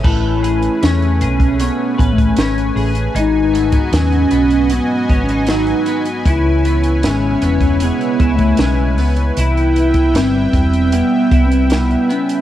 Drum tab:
CC |x---------------|----------------|----------------|----------------|
HH |--xxxxxxx-xxxxox|x-xxxxxxx-xxxxxx|x-xxx-xxxxxxx-ox|xxxxx-xxx-xxxxxx|
SD |----o-------o---|----o-------o---|----o-------o---|----o-------o---|
BD |o------o--oo----|---o------o-----|o------o--oo----|---o--o---o-----|